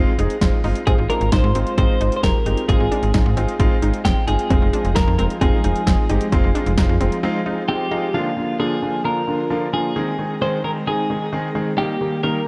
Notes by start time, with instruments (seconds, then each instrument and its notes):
Already playing: grand piano G#3 C4 D#4 F4, synth arpeggio sound C4
0.19 fm bass F1, grand piano G#3 C4 D#4 G#4, synth arpeggio sound D#4, closed hi-hat
0.30 closed hi-hat
0.41 fm bass F1, grand piano G#3 C4 D#4 F4, synth arpeggio sound C4, kick, snare, closed hi-hat
0.64 fm bass G1, grand piano G#3 C4 D#4 F4, synth arpeggio sound D#4, open hi-hat
0.75 closed hi-hat
0.87 fm bass G#1, grand piano G#3 C4 D#4 F4, string machine G#3 C4 F4, synth arpeggio sound C4, clean electric guitar G#4, kick, closed hi-hat
0.98 fm bass G#1
1.10 grand piano G#3 C4 D#4 F4, synth arpeggio sound D4, clean electric guitar A#4, closed hi-hat
1.21 fm bass G#1, closed hi-hat
1.32 fm bass G#1, grand piano G#3 C4 D#4 F4, synth arpeggio sound D#4, clean electric guitar C5, kick, snare, closed hi-hat
1.44 fm bass G#2
1.55 fm bass G#1, grand piano G#3 C4 D#4 F4, synth arpeggio sound C4, closed hi-hat
1.67 closed hi-hat
1.78 fm bass G#1, grand piano G#3 C4 D#4 F4, synth arpeggio sound C4, clean electric guitar C5, kick, closed hi-hat
2.01 fm bass G#1, grand piano G#3 C4 D#4 F4, synth arpeggio sound D#4, closed hi-hat
2.12 closed hi-hat
2.16 clean electric guitar C5
2.23 fm bass F1, grand piano G#3 C4 D#4 G4, synth arpeggio sound C4, clean electric guitar A#4, kick, snare, closed hi-hat
2.46 fm bass G1, grand piano G#3 C4 D#4 G4, synth arpeggio sound D#4, closed hi-hat
2.57 closed hi-hat
2.69 fm bass G#1, grand piano G#3 C4 D#4 F4, synth arpeggio sound C4, clean electric guitar G#4, kick, closed hi-hat
2.80 fm bass G#1
2.91 grand piano G#3 C4 D#4 F4, synth arpeggio sound D4, closed hi-hat
3.03 fm bass G#1, closed hi-hat
3.14 fm bass G#1, grand piano G#3 C4 D#4 F4, synth arpeggio sound D#4, kick, snare, closed hi-hat
3.26 fm bass G#2
3.37 fm bass G#1, grand piano G#3 C4 D#4 F4, synth arpeggio sound C4, closed hi-hat
3.48 closed hi-hat
3.60 fm bass G#1, grand piano G#3 C4 D#4 F4, synth arpeggio sound C4, kick, closed hi-hat
3.82 fm bass G#1, grand piano G#3 C4 D#4 F4, synth arpeggio sound D#4, closed hi-hat
3.94 closed hi-hat
4.05 fm bass F1, grand piano G#3 C4 D#4 F4, synth arpeggio sound C4, clean electric guitar G4, kick, snare, closed hi-hat
4.27 fm bass G1, grand piano G#3 C4 D#4 F4, synth arpeggio sound D#4, clean electric guitar G#4, closed hi-hat
4.39 closed hi-hat
4.50 fm bass F1, string machine F3 G#3 D#4, grand piano G#3 C4 D#4 F4, synth arpeggio sound C4, kick, closed hi-hat
4.62 fm bass F1
4.73 grand piano G#3 C4 D#4 F4, synth arpeggio sound D4, closed hi-hat
4.85 fm bass F1, closed hi-hat
4.96 fm bass F1, grand piano G#3 C4 D#4 F4, synth arpeggio sound D#4, clean electric guitar A#4, kick, snare, closed hi-hat
5.07 fm bass F2
5.18 fm bass F1, grand piano G#3 C4 D#4 F4, synth arpeggio sound C4, clean electric guitar A#4, closed hi-hat
5.30 closed hi-hat
5.41 fm bass F1, grand piano G#3 C4 D#4 F4, synth arpeggio sound C4, clean electric guitar G#4, kick, closed hi-hat
5.64 fm bass F1, grand piano G#3 C4 D#4 F4, synth arpeggio sound D#4, closed hi-hat
5.76 closed hi-hat
5.87 fm bass F1, grand piano G#3 C4 D#4 F4, synth arpeggio sound C4, kick, snare, closed hi-hat
6.10 fm bass G1, grand piano G#3 C4 D#4 G4, synth arpeggio sound D#4, closed hi-hat
6.21 closed hi-hat
6.32 fm bass F1, grand piano G#3 C4 D#4 F4, synth arpeggio sound C4, kick, closed hi-hat
6.44 fm bass F1
6.55 grand piano G#3 C4 D#4 F4, synth arpeggio sound D4, closed hi-hat
6.66 fm bass F1, closed hi-hat
6.78 fm bass F1, grand piano G#3 C4 D#4 F4, synth arpeggio sound D#4, kick, snare, closed hi-hat
6.89 fm bass F2
7.01 fm bass F1, grand piano G#3 C4 D#4 F4, synth arpeggio sound C4, closed hi-hat
7.12 closed hi-hat
7.23 grand piano G#3 C4 D#4 F4, synth arpeggio sound C4
7.46 grand piano G#3 C4 D#4 F4, synth arpeggio sound D#4
7.69 grand piano G#3 C4 D#4 F4 F5, synth arpeggio sound C4, clean electric guitar G4
7.91 grand piano G#3 C4 D#4 F4 G#5, synth arpeggio sound D#4
8.14 grand piano D3 F3 A#3 D4 F4, string machine A#3 D4 F4, clean electric guitar F4
8.37 grand piano D3 F3 A#3 D4 F4
8.59 grand piano D3 F3 A#3 D4 F4, clean electric guitar G#4
8.82 grand piano D3 F3 A#3 D4 F4
9.05 grand piano D3 F3 A#3 D4 F4, clean electric guitar A#4
9.28 grand piano D3 F3 A#3 D4 F4
9.50 grand piano D3 F3 A#3 D4 F4
9.73 grand piano D3 F3 A#3 D4 F4, clean electric guitar G#4
9.96 grand piano D#3 G#3 C4 D#4 G#4, string machine G#3 C4 D#4
10.19 grand piano D#3 G#3 C4 D#4 G#4
10.41 grand piano D#3 G#3 C4 D#4 G#4, clean electric guitar C5
10.64 grand piano D#3 G#3 C4 D#4 G#4, clean electric guitar A#4
10.87 grand piano D#3 G#3 C4 D#4 G#4, clean electric guitar G#4
11.10 grand piano D#3 G#3 C4 D#4 G#4
11.33 grand piano D#3 G#3 C4 D#4 G#4
11.55 grand piano D#3 G#3 C4 D#4 G#4
11.78 grand piano D#3 G3 A#3 D#4 G4, string machine D#3 A#3 G4, clean electric guitar G4
12.01 grand piano D#3 G3 A#3 D#4 G4
12.23 grand piano D#3 G3 A#3 D#4 A#4, clean electric guitar A#4